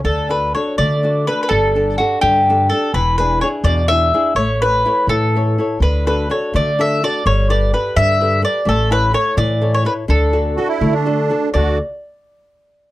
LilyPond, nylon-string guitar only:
\new Staff \with { instrumentName = "Nylon-string guitar" } { \time 6/8 \key d \major \tempo 4. = 84 d8 <d' fis' a'>8 <d' fis' a'>8 a8 <d' fis' a'>8 <d' fis' a'>8 | g8 <d' g' a'>8 <d' g' a'>8 d8 <d' g' a'>8 <d' g' a'>8 | e8 <d' e' gis'>8 <d' e' gis'>8 b,8 <d' e' gis'>8 <d' e' gis'>8 | a8 <e' a' cis''>8 <e' a' cis''>8 e8 <e' a' cis''>8 <e' a' cis''>8 |
d8 <d' fis' a'>8 <d' fis' a'>8 a8 <d' fis' a'>8 <d' fis' a'>8 | g8 <g' a' b'>8 <g' a' b'>8 d8 <g' a' b'>8 <g' a' b'>8 | a8 <e' a' cis''>8 <e' a' cis''>8 e8 <e' a' cis''>8 <e' a' cis''>8 | d8 <d' fis' a'>8 <d' fis' a'>8 a8 <d' fis' a'>8 <d' fis' a'>8 |
<d a d' fis' a'>8 r2 r8 | }